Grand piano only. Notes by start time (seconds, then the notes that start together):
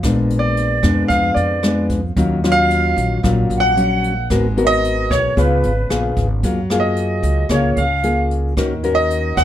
0.39 D5
1.08 F5
1.34 D5
2.52 F5
3.60 F#5
4.67 D#5
5.11 C#5
5.39 B4
6.80 D#5
7.51 C#5
7.78 F5
8.95 D#5
9.37 F#5